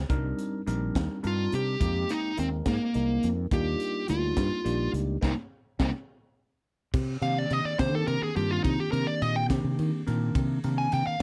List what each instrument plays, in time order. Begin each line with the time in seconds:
0.09 fretless electric bass C2, tine electric piano G3 C4 D4 D#4 A#4, kick, closed hi-hat
0.39 closed hi-hat
0.67 fretless electric bass A#1, tine electric piano G3 C4 D4 D#4 A#4, closed hi-hat
0.95 fretless electric bass D#2, kick, snare, closed hi-hat
1.23 fretless electric bass G2, tine electric piano G3 C4 D4 D#4 A#4, closed hi-hat
1.27 lead electric guitar F4
1.52 fretless electric bass C3, lead electric guitar G4, closed hi-hat
1.80 fretless electric bass F2, tine electric piano G#3 A#3 C4 D#4 G4, kick, closed hi-hat
2.09 lead electric guitar D#4, closed hi-hat
2.37 fretless electric bass D#2, tine electric piano G#3 A#3 C4 D#4 A#4, lead electric guitar C4, closed hi-hat
2.66 fretless electric bass G#2, lead electric guitar A#3, kick, snare, closed hi-hat
2.94 fretless electric bass C2, tine electric piano G#3 A#3 C4 D#4 A#4, closed hi-hat
3.23 fretless electric bass F2, closed hi-hat
3.51 fretless electric bass D#2, tine electric piano G3 A#3 D4 D#4 F4, lead electric guitar G4, kick, closed hi-hat
3.80 closed hi-hat
4.08 fretless electric bass D2, tine electric piano G3 A#3 D4 D#4 F4, lead electric guitar F4, closed hi-hat
4.37 fretless electric bass G2, kick, snare, closed hi-hat
4.64 fretless electric bass A#1, tine electric piano G3 A#3 D4 D#4 G4, closed hi-hat
4.93 fretless electric bass C#2, closed hi-hat
5.21 fretless electric bass C2, tine electric piano A#3 C4 D#4, lead electric guitar A#3 C4 D#4, kick, snare
5.79 fretless electric bass C2, tine electric piano A#3 C4 D#4, lead electric guitar A#3 C4 D#4, kick, snare
6.94 fretless electric bass C3, kick, crash
7.21 fretless electric bass C3, tine electric piano D#3 A#3 C4 D4 G4, lead electric guitar F5, ride
7.38 lead electric guitar D5
7.50 fretless electric bass C3, lead electric guitar D#5, ride
7.65 lead electric guitar D5, muted fretless electric bass stroke
7.79 fretless electric bass C3, tine electric piano D#3 A#3 C4 D4 G4, lead electric guitar C5, kick, snare, ride
7.94 fretless electric bass D#3, lead electric guitar A4
8.07 fretless electric bass C3, lead electric guitar A#4, ride
8.22 lead electric guitar G#4, muted fretless electric bass stroke
8.35 fretless electric bass G2, tine electric piano D#3 A#3 C4 D4 F4, lead electric guitar G4, ride
8.51 lead electric guitar F4
8.64 fretless electric bass C3, lead electric guitar D#4, kick, ride
8.80 lead electric guitar G4
8.92 fretless electric bass C3, tine electric piano D#3 A#3 C4 D4 G4, lead electric guitar A#4, ride
9.07 lead electric guitar D5
9.22 fretless electric bass A#2, lead electric guitar D#5, ride
9.36 lead electric guitar G5
9.49 fretless electric bass C3, tine electric piano D#3 A#3 C4 D4 G4, kick, snare, ride
9.64 fretless electric bass C3
9.79 fretless electric bass D#3, ride
10.06 fretless electric bass A#2, tine electric piano D#3 A#3 C4 D4 A#4, ride
10.35 fretless electric bass C3, kick, ride
10.64 fretless electric bass C3, tine electric piano D#3 A#3 C4 D4 A#4, ride
10.78 lead electric guitar G#5
10.92 fretless electric bass C3, lead electric guitar G5, ride
11.07 lead electric guitar F5, muted fretless electric bass stroke